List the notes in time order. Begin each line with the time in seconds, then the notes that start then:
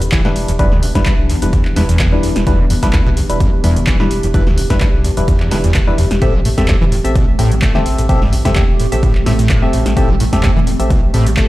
Already playing: E1 E3 B3 D4 G4
0.02 G3, closed hi-hat
0.12 E1 E3, kick, clap, closed hi-hat
0.25 A2 G3 D4 E4 B4, snare
0.36 E1, open hi-hat
0.48 E1 E2, closed hi-hat
0.59 E1 F#2 G3 D4 E4 B4, kick, closed hi-hat
0.72 D2, snare
0.83 E1, open hi-hat
0.95 B1 G2 G3 D4 E4 B4, kick, snare, closed hi-hat
1.06 G2, kick, clap, closed hi-hat
1.19 B1
1.29 E2, open hi-hat
1.42 E1 E2 G3 D4 E4 B4, closed hi-hat
1.53 E2, kick, closed hi-hat
1.65 clap
1.76 E1 E2 G3 D4 E4 B4, snare, open hi-hat
1.89 E2, closed hi-hat
1.99 E1, kick, clap, closed hi-hat
2.12 D2 G3 D4 E4 B4
2.23 E1 E2, open hi-hat
2.36 E1, snare, closed hi-hat
2.47 E1 E2 G3 D4 E4 B4, kick, closed hi-hat
2.59 E3
2.70 E2, open hi-hat
2.83 B1 G3 D4 E4 B4, kick, snare, closed hi-hat
2.93 D2, kick, clap, closed hi-hat
3.06 B1 B2
3.17 E2, open hi-hat
3.30 E1 G3 D4 E4 B4, closed hi-hat
3.40 F#2, kick, closed hi-hat
3.64 E1 E2 G3 D4 E4 B4, open hi-hat
3.76 G3, closed hi-hat
3.87 E1 E3, kick, clap, closed hi-hat
4.00 A2 G3 D4 E4 B4, snare
4.11 E1, open hi-hat
4.23 E1 E2, closed hi-hat
4.34 E1 F#2 G3 D4 E4 B4, kick, closed hi-hat
4.47 D2, snare
4.58 E1, open hi-hat
4.70 B1 G2 G3 D4 E4 B4, kick, snare, closed hi-hat
4.80 G2, kick, clap, closed hi-hat
4.94 B1
5.04 E2, open hi-hat
5.17 E1 E2 G3 D4 E4 B4, closed hi-hat
5.28 E2, kick, closed hi-hat
5.40 clap
5.51 E1 E3 G3 D4 E4 B4, snare, open hi-hat
5.64 E2, closed hi-hat
5.74 E1 A2, kick, clap, closed hi-hat
5.87 E2 G3 D4 E4 B4
5.98 E1 E2, open hi-hat
6.11 E1, snare, closed hi-hat
6.22 A1 A2 A3 C4 G4 A4 E5, kick, closed hi-hat
6.34 A3
6.45 A2, open hi-hat
6.58 E2 C4 G4 A4 E5, kick, snare, closed hi-hat
6.68 G2, kick, clap, closed hi-hat
6.81 E1 E3
6.92 A2, open hi-hat
7.05 A1 C4 G4 A4 E5, closed hi-hat
7.15 B2, kick, closed hi-hat
7.39 A1 A2 C4 G4 A4 E5, open hi-hat
7.52 C4, closed hi-hat
7.62 A1 A3, kick, clap, closed hi-hat
7.75 D3 C4 G4 A4 E5, snare
7.86 A1, open hi-hat
7.98 A1 A2, closed hi-hat
8.09 A1 B2 C4 G4 A4 E5, kick, closed hi-hat
8.22 G2, snare
8.33 A1, open hi-hat
8.45 E2 C3 C4 G4 A4 E5, kick, snare, closed hi-hat
8.56 C3, kick, clap, closed hi-hat
8.69 E1
8.80 A2, open hi-hat
8.92 A1 A2 C4 G4 A4 E5, closed hi-hat
9.03 A2, kick, closed hi-hat
9.15 clap
9.26 A1 A2 C4 G4 A4 E5, snare, open hi-hat
9.39 A2, closed hi-hat
9.49 A1, kick, clap, closed hi-hat
9.62 G2 C4 G4 A4 E5
9.73 A1 A2, open hi-hat
9.86 A1, snare, closed hi-hat
9.97 A1 A2 C4 G4 A4 E5, kick, closed hi-hat
10.09 A3
10.20 A2, open hi-hat
10.33 E2 C4 G4 A4 E5, kick, snare, closed hi-hat
10.43 G2, kick, clap, closed hi-hat
10.56 E1 E3
10.67 A2, open hi-hat
10.80 A1 C4 G4 A4 E5, closed hi-hat
10.90 B2, kick, closed hi-hat
11.14 A1 A2 C4 G4 A4 E5, open hi-hat
11.27 C4, closed hi-hat
11.37 A1 A3, kick, clap, closed hi-hat